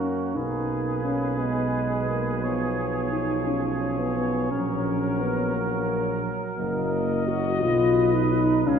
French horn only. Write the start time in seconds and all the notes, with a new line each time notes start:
0.00 C#4
0.35 D#4
1.04 C#4
1.39 B3
2.09 A#3
2.42 B3
3.12 D#4
3.46 C#4
3.99 B3
4.16 B3
4.50 C#4
5.20 B3
5.55 A#3
6.58 A#3
7.27 F#4
7.62 F4
8.15 D#4
8.32 D#4
8.66 C#4